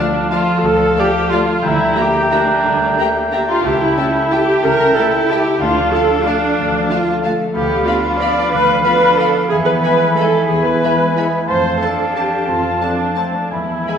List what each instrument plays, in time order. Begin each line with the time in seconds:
Already playing: harp D3 F3 D4 F4 A4 D5, cello section G3, viola section D4, clarinet D5, oboe F5, flute A5
0.14 harp F5
0.30 cello section F3, french horn section A3 F4, viola section F4, harp F4, violin section D5 F5 A5
0.48 harp A4
0.62 double bass section D2, harp D3, viola section A4
0.80 harp F3
0.96 french horn section A3 F4, viola section G4, harp A4, violin section D5 F5 A5
1.14 harp F5
1.29 french horn section A3 F4, cello section A3, viola section F4, harp F4, violin section D5 F5 A5
1.48 harp A4
1.62 double bass section D2, harp D3, cello section G3, viola section E4, clarinet E5, oboe G5, flute A#5
1.79 harp G3
1.96 french horn section A#3 G4, cello section A#3, viola section G4, harp A#4, violin section E5 G5 A#5
2.13 harp E5
2.29 cello section A3, french horn section A#3 G4, viola section D4, harp G4, violin section E5 G5 A#5
2.49 harp A#4
2.64 double bass section D2, harp D3, cello section G3
2.80 harp G3
2.96 french horn section A#3 G4, cello section A#3, harp A#4, violin section A#5
3.00 violin section E5 G5
3.15 harp E5
3.32 french horn section A#3 G4, cello section D4, harp G4, violin section E5 G5 A#5
3.48 viola section F4, harp A#4
3.64 double bass section C#2, harp C#3, cello section E4, viola section G4, clarinet E5, oboe G5, flute A5
3.81 harp G3, viola section E4
3.96 french horn section A3 G4, cello section C#4, harp A4, violin section E5 G5 A5
4.14 harp E5
4.31 french horn section A3 G4, cello section E4, harp G4, viola section G4, violin section E5 G5 A5
4.48 harp A4
4.63 double bass section C#2, harp C#3, cello section C#4, viola section A#4
4.79 harp G3
4.96 french horn section A3 G4, cello section E4, viola section A4, harp A4, violin section E5 G5 A5
5.13 harp E5
5.29 french horn section A3 G4, viola section G4, harp G4, violin section E5 G5 A5
5.45 harp A4
5.60 double bass section D2, harp D3, cello section D4, viola section F4, clarinet F5, oboe F5, flute A5
5.76 harp F3
5.93 french horn section A3 F4, harp A4, viola section A4, violin section F5 A5
6.09 harp F5
6.25 french horn section A3 F4, viola section D4, harp F4, violin section F5 A5
6.43 harp A4
6.57 double bass section D2, harp D3
6.73 harp F3
6.89 french horn section A3 F4, cello section F4, harp A4, violin section F5 A5
7.06 harp F5
7.22 french horn section A3 F4, cello section A3, harp F4, violin section F5 A5
7.39 harp A4
7.54 double bass section D2, harp D3, cello section B3, viola section G4, oboe F5, clarinet F5, flute B5
7.71 harp F3
7.86 french horn section B3 F4, cello section D4, viola section F4, harp B4, violin section F5 B5
8.04 harp F5
8.19 french horn section B3 F4, harp F4, viola section D5, violin section F5 B5
8.37 harp B4
8.52 double bass section D2, harp D3, viola section B4
8.68 harp F3
8.84 french horn section B3 F4, cello section D4, viola section B4, harp B4, violin section F5 B5
9.01 harp F5
9.18 french horn section B3 F4, viola section A4, violin section F5 B5
9.35 harp B4
9.49 double bass section E2, harp E3, cello section B3, viola section G#4, clarinet E5, oboe G#5, flute B5
9.66 harp E4, viola section B4
9.83 french horn section G#3 E4, harp G#4, viola section B4, violin section E5 G#5 B5
10.01 harp B5
10.16 cello section E3, french horn section G#3 E4, viola section A4, harp E5, violin section E5 B5
10.20 violin section G#5
10.48 double bass section E2, harp E3, viola section G#4
10.65 harp E4, viola section B4
10.81 cello section G#3, french horn section G#3 E4, harp G#4, violin section E5 G#5 B5
11.15 french horn section G#3 E4, cello section B3, harp E5, violin section E5 G#5 B5
11.32 harp G#4
11.47 double bass section F2, harp F3, cello section A3, viola section C5, clarinet F5, oboe A5, flute A5
11.65 harp A3
11.80 french horn section A3 C4, cello section D4, viola section A4, harp A4, violin section A5
11.99 harp A5
12.14 french horn section A3 C4, viola section G4, harp A4, violin section A5
12.32 harp A3
12.48 double bass section F2, harp F3, cello section C4, viola section F4
12.63 harp F4
12.81 french horn section A3 C4, viola section D4, harp A4, violin section A5
12.99 harp A5
13.16 cello section A3, french horn section A3 C4, viola section C4, harp A4, violin section A5
13.33 harp A3, viola section D4
13.51 double bass section E2, harp E3, cello section G#3, viola section E4, clarinet E5, oboe G#5, flute B5
13.69 harp E4
13.87 french horn section G#3, harp B4, violin section E5 G#5 B5